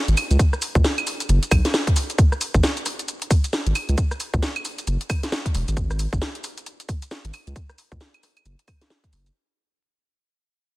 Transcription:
0.08 0.15 G#1 loud
0.08 closed hi-hat medium
0.08 shaker soft
0.17 open hi-hat loud
0.17 claves medium
0.17 shaker medium
0.31 0.37 C#2 loud
0.31 closed hi-hat soft
0.31 shaker soft
0.39 kick loud
0.39 closed hi-hat medium
0.39 shaker soft
0.53 cross-stick medium
0.53 shaker soft
0.62 open hi-hat loud
0.62 shaker medium
0.75 0.82 C#2 loud
0.75 kick loud
0.75 shaker soft
0.84 snare loud
0.84 shaker soft
0.98 closed hi-hat soft
0.98 claves medium
0.98 shaker soft
1.07 open hi-hat loud
1.07 shaker medium
1.20 closed hi-hat medium
1.20 shaker soft
1.29 1.39 F#1 loud
1.29 closed hi-hat medium
1.29 shaker soft
1.43 closed hi-hat medium
1.43 shaker soft
1.51 1.61 B1 medium
1.51 kick loud
1.51 cross-stick medium
1.51 open hi-hat loud
1.51 claves medium
1.51 shaker medium
1.65 snare medium
1.65 closed hi-hat medium
1.65 shaker soft
1.74 snare loud
1.74 shaker soft
1.87 kick medium
1.87 closed hi-hat medium
1.87 shaker soft
1.96 open hi-hat loud
1.96 shaker medium
2.10 closed hi-hat soft
2.10 shaker soft
2.18 kick loud
2.18 closed hi-hat medium
2.18 shaker soft
2.32 cross-stick medium
2.32 shaker soft
2.41 open hi-hat loud
2.41 shaker medium
2.54 2.61 G#1 medium
2.54 kick loud
2.54 shaker soft
2.63 snare loud
2.63 shaker soft
2.77 closed hi-hat soft
2.77 shaker soft
2.86 cross-stick soft
2.86 open hi-hat loud
2.86 shaker medium
2.99 closed hi-hat medium
2.99 shaker soft
3.08 closed hi-hat medium
3.08 shaker soft
3.22 closed hi-hat medium
3.22 shaker soft
3.31 kick loud
3.31 open hi-hat loud
3.31 shaker medium
3.44 closed hi-hat medium
3.44 shaker soft
3.53 snare loud
3.53 shaker soft
3.66 3.73 G#1 loud
3.66 closed hi-hat medium
3.66 shaker soft
3.75 open hi-hat loud
3.75 claves medium
3.75 shaker medium
3.89 3.95 C#2 loud
3.89 closed hi-hat soft
3.89 shaker soft
3.98 kick loud
3.98 closed hi-hat medium
3.98 shaker soft
4.11 cross-stick medium
4.11 shaker soft
4.20 open hi-hat loud
4.20 shaker medium
4.34 4.40 C#2 loud
4.34 kick loud
4.34 shaker soft
4.43 snare loud
4.43 shaker soft
4.56 closed hi-hat soft
4.56 claves medium
4.56 shaker soft
4.65 open hi-hat loud
4.65 shaker medium
4.78 closed hi-hat medium
4.78 shaker soft
4.87 4.97 F#1 loud
4.87 closed hi-hat medium
4.87 shaker soft
5.01 closed hi-hat medium
5.01 shaker soft
5.10 kick loud
5.10 cross-stick medium
5.10 open hi-hat loud
5.10 claves medium
5.10 shaker medium
5.23 snare medium
5.23 closed hi-hat medium
5.23 shaker soft
5.32 snare loud
5.32 shaker soft
5.46 kick medium
5.46 closed hi-hat medium
5.46 shaker soft
5.54 5.64 E1 medium
5.54 open hi-hat loud
5.54 shaker medium
5.68 6.07 G#1 loud
5.68 closed hi-hat soft
5.68 shaker soft
5.77 kick loud
5.77 closed hi-hat medium
5.77 shaker soft
5.91 cross-stick medium
5.91 shaker soft
5.99 open hi-hat loud
5.99 shaker medium
6.13 6.19 G#1 loud
6.13 kick loud
6.13 shaker soft
6.22 snare loud
6.22 shaker soft
6.35 closed hi-hat soft
6.35 shaker soft
6.44 open hi-hat loud
6.44 shaker medium
6.58 closed hi-hat medium
6.58 shaker soft
6.66 closed hi-hat medium
6.66 shaker soft
6.80 closed hi-hat medium
6.80 shaker soft
6.89 kick loud
6.89 open hi-hat loud
6.89 shaker medium
7.02 closed hi-hat medium
7.02 shaker soft
7.11 snare loud
7.11 shaker soft
7.25 7.31 G#1 loud
7.25 closed hi-hat medium
7.25 shaker soft
7.34 open hi-hat loud
7.34 claves medium
7.34 shaker medium
7.47 7.53 C#2 loud
7.47 closed hi-hat soft
7.47 shaker soft
7.56 kick loud
7.56 closed hi-hat medium
7.56 shaker soft
7.70 cross-stick medium
7.70 shaker soft
7.78 open hi-hat loud
7.78 shaker medium
7.92 7.98 C#2 loud
7.92 kick loud
7.92 shaker soft
8.01 snare loud
8.01 shaker soft
8.14 closed hi-hat soft
8.14 claves medium
8.14 shaker soft
8.23 cross-stick soft
8.23 open hi-hat loud
8.23 shaker medium
8.37 closed hi-hat medium
8.37 claves medium
8.37 shaker soft
8.45 8.55 F#1 loud
8.45 closed hi-hat medium
8.45 shaker soft
8.59 closed hi-hat medium
8.59 shaker soft
8.68 kick loud
8.68 cross-stick medium
8.68 open hi-hat loud
8.68 claves medium
8.68 shaker medium
8.81 snare medium
8.81 closed hi-hat medium
8.81 shaker soft
8.90 snare loud
8.90 shaker soft
9.04 kick medium
9.04 closed hi-hat medium
9.04 shaker soft
9.13 9.30 F#1 loud
9.13 open hi-hat loud
9.13 shaker medium
9.26 closed hi-hat soft
9.26 shaker soft

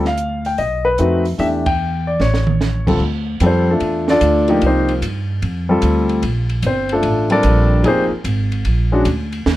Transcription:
0.00 0.55 D2 medium
0.05 0.48 F5 medium
0.05 snare soft
0.18 closed hi-hat soft
0.45 0.60 G5 medium
0.45 open hi-hat soft
0.58 0.96 B1 medium
0.58 0.87 D#5 medium
0.58 open hi-hat soft
0.85 1.23 B4 medium
0.98 1.37 F2 medium
0.98 1.23 A3 medium
0.98 1.23 C4 medium
0.98 1.24 D#4 medium
0.98 1.24 F#4 medium
0.98 closed hi-hat soft
1.25 open hi-hat soft
1.38 2.16 E2 medium
1.38 1.63 E3 medium
1.38 1.64 A3 medium
1.38 1.64 D4 medium
1.38 1.64 G4 medium
1.38 1.46 E5 medium
1.38 open hi-hat soft
1.66 2.08 G5 medium
1.66 kick medium
1.66 ride medium
2.07 2.21 D5 medium
2.20 2.97 A1 medium
2.20 2.84 C#5 medium
2.20 snare soft
2.34 snare medium
2.47 mid tom medium
2.61 snare medium
2.87 2.99 D3 medium
2.87 3.00 G3 medium
2.87 3.00 C4 medium
2.87 3.00 F4 medium
2.87 3.00 A4 medium
2.87 kick medium
2.87 crash medium
3.00 3.40 D2 medium
3.40 3.80 F2 medium
3.40 3.66 G3 medium
3.40 3.46 C4 medium
3.40 3.45 F4 medium
3.40 3.45 A4 medium
3.40 hi-hat pedal medium
3.40 ride medium
3.46 3.70 C4 medium
3.46 3.69 F4 medium
3.46 3.69 A4 medium
3.46 3.70 C5 medium
3.71 4.07 A3 soft
3.71 4.07 D4 soft
3.71 4.07 F4 soft
3.71 4.07 A4 medium
3.80 4.20 E2 medium
3.80 ride medium
4.08 4.60 D4 medium
4.08 4.60 F4 medium
4.08 4.60 A4 medium
4.08 4.59 D5 medium
4.08 snare medium
4.21 4.61 D2 medium
4.21 hi-hat pedal medium
4.21 ride medium
4.48 5.00 F3 medium
4.48 5.00 A#3 medium
4.48 4.65 D#4 medium
4.48 4.66 G4 medium
4.48 ride soft
4.61 5.01 C2 medium
4.61 ride medium
4.66 4.91 C4 medium
4.66 4.91 D#4 medium
4.66 4.91 G4 medium
4.66 4.91 C5 medium
4.89 ride soft
5.02 5.41 G2 medium
5.02 hi-hat pedal soft
5.02 ride medium
5.42 5.82 F2 medium
5.42 ride medium
5.69 6.21 G3 medium
5.69 6.21 C4 medium
5.69 6.21 F4 medium
5.69 6.22 A4 medium
5.82 6.22 D2 medium
5.82 hi-hat pedal medium
5.82 ride medium
6.09 ride soft
6.23 6.62 A#1 medium
6.23 ride medium
6.49 ride soft
6.62 7.02 G1 medium
6.62 hi-hat pedal medium
6.62 ride medium
6.66 6.92 C4 medium
6.66 6.91 C5 medium
6.89 7.30 A3 medium
6.89 7.29 F4 medium
6.89 7.29 A4 medium
6.89 ride soft
6.93 7.30 D4 medium
7.03 7.43 A1 medium
7.03 ride medium
7.30 7.82 G3 medium
7.30 7.82 C4 medium
7.30 7.82 D4 medium
7.30 7.82 F4 medium
7.30 7.82 A4 medium
7.30 7.82 A#4 medium
7.30 7.82 D5 loud
7.30 ride soft
7.43 7.83 A#1 medium
7.43 hi-hat pedal medium
7.43 ride medium
7.83 8.10 F1 medium
7.83 8.08 F3 medium
7.83 8.09 A#3 medium
7.83 8.09 D#4 medium
7.83 8.10 G#4 medium
7.83 ride medium
7.88 8.03 C4 medium
7.88 8.04 G4 medium
7.88 8.03 C5 medium
8.11 muted upright bass stroke soft
8.24 8.64 G#1 medium
8.24 hi-hat pedal soft
8.24 ride medium
8.52 ride soft
8.65 9.05 A#1 medium
8.65 ride medium
8.92 9.05 G#3 medium
8.92 9.05 C#4 medium
8.92 9.05 D4 medium
8.92 9.05 F#4 medium
9.05 9.45 D2 medium
9.05 hi-hat pedal medium
9.05 ride medium
9.32 ride soft
9.46 9.57 D#2 medium
9.46 snare medium

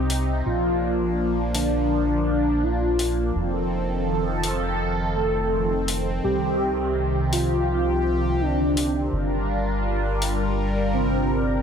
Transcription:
0.00 0.42 C2 medium
0.00 0.42 C3 medium
0.00 0.31 C4 loud
0.00 0.42 C4 medium
0.00 0.42 D#4 medium
0.00 0.42 G4 medium
0.10 open hi-hat medium
0.45 3.32 A#1 medium
0.45 3.32 F3 medium
0.45 3.32 A#3 medium
0.45 3.32 D4 medium
0.45 1.40 F4 loud
1.54 2.64 D4 loud
1.54 open hi-hat medium
2.63 3.57 F4 loud
2.99 open hi-hat medium
3.35 6.21 F1 medium
3.35 9.10 D#3 medium
3.35 6.21 F3 medium
3.35 9.10 C4 medium
3.35 6.21 A4 medium
4.44 open hi-hat medium
5.16 6.10 A4 medium
5.88 open hi-hat medium
6.24 9.10 C2 medium
6.24 9.11 C3 medium
6.24 7.18 G4 loud
6.24 9.11 G4 medium
7.33 8.42 F4 loud
7.33 open hi-hat medium
8.41 9.35 D4 loud
8.77 open hi-hat medium
9.13 11.62 G1 medium
9.13 11.62 G3 medium
9.13 11.62 D4 medium
9.13 11.62 F4 medium
9.13 11.62 A#4 medium
10.22 open hi-hat medium
10.94 11.62 C4 medium

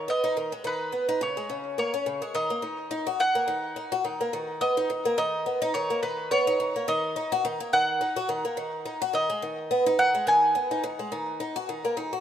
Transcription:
0.08 0.23 B3 medium
0.08 0.62 D#5 medium
0.24 0.35 D#4 medium
0.37 0.51 D#3 medium
0.52 0.64 G#3 medium
0.64 0.92 D#3 medium
0.64 1.22 B4 medium
0.92 1.08 B3 medium
1.09 1.20 D#4 medium
1.21 1.36 C#3 medium
1.21 1.78 C#5 medium
1.37 1.49 G#3 medium
1.49 1.77 C#3 medium
1.78 1.93 A#3 medium
1.78 2.35 C#5 medium
1.94 2.05 C#4 medium
2.06 2.21 C#3 medium
2.22 2.33 G#3 medium
2.35 2.49 D#3 medium
2.35 3.23 D#5 medium
2.50 2.62 A#3 medium
2.62 2.90 D#3 medium
2.91 3.06 D#4 medium
3.07 3.18 F#4 medium
3.20 3.34 D#3 medium
3.20 4.29 F#5 loud
3.35 3.47 A#3 medium
3.48 3.75 D#3 medium
3.76 3.91 D#4 medium
3.92 4.03 F#4 loud
4.05 4.19 D#3 medium
4.21 4.32 A#3 medium
4.33 4.60 D#3 medium
4.61 4.76 B3 medium
4.61 5.17 D#5 medium
4.77 4.89 D#4 medium
4.90 5.04 D#3 medium
5.05 5.17 A#3 medium
5.18 5.45 D#3 medium
5.18 5.71 D#5 medium
5.46 5.61 B3 medium
5.62 5.73 D#4 loud
5.74 5.89 D#3 medium
5.74 6.02 C#5 medium
5.90 6.02 A#3 medium
6.03 6.30 D#3 medium
6.03 6.31 B4 medium
6.31 6.46 B3 medium
6.31 6.88 C#5 medium
6.47 6.58 D#4 medium
6.60 6.74 D#3 medium
6.76 6.87 A#3 medium
6.88 7.15 D#3 medium
6.88 7.76 D#5 medium
7.16 7.31 D#4 medium
7.32 7.43 F#4 loud
7.45 7.59 D#3 medium
7.60 7.72 A#3 medium
7.73 8.00 D#3 medium
7.73 9.19 F#5 loud
8.01 8.16 D#4 medium
8.16 8.28 F#4 medium
8.29 8.43 D#3 medium
8.45 8.56 A#3 medium
8.57 8.84 D#3 medium
8.85 9.01 D#4 medium
9.02 9.13 F#4 loud
9.13 9.28 D#3 medium
9.13 9.95 D#5 loud
9.30 9.41 G#3 medium
9.42 9.70 D#3 medium
9.71 9.86 B3 medium
9.86 9.98 D#4 loud
9.99 10.13 D#3 medium
9.99 10.28 F#5 loud
10.14 10.26 G#3 medium
10.27 10.54 D#3 medium
10.27 10.81 G#5 medium
10.55 10.71 B3 medium
10.71 10.83 D#4 medium
10.84 10.98 D#3 medium
10.99 11.11 G#3 medium
11.12 11.39 D#3 medium
11.40 11.56 D#4 medium
11.56 11.67 F#4 loud
11.69 11.83 D#3 medium
11.85 11.96 A#3 medium
11.97 12.11 D#3 medium
12.13 12.20 F#4 medium

